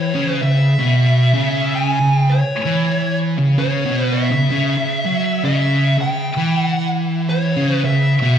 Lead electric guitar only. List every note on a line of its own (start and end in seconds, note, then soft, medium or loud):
0.00 0.42 C#5 loud
0.42 1.77 E5 loud
1.75 2.16 G#5 loud
2.16 2.30 G5 loud
2.30 3.17 C#5 loud
3.59 4.13 C#5 medium
4.13 5.44 E5 loud
5.45 5.95 E5 loud
6.01 6.60 G5 loud
6.60 6.88 F#5 loud
7.29 7.85 C#5 loud
7.85 8.39 E5 loud